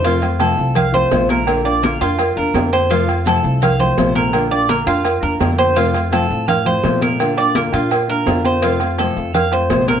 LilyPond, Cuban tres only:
\new Staff \with { instrumentName = "Cuban tres" } { \time 4/4 \key f \major \tempo 4 = 168 f'4 a'4 f''8 c''4 bes'8~ | bes'8 d''8 bes'8 f'4 bes'4 c''8 | f'4 a'4 f''8 c''4 bes'8~ | bes'8 d''8 bes'8 f'4 bes'4 c''8 |
f'4 a'4 f''8 c''4 bes'8~ | bes'8 d''8 bes'8 f'4 bes'4 c''8 | f'4 a'4 f''8 c''4 bes'8 | }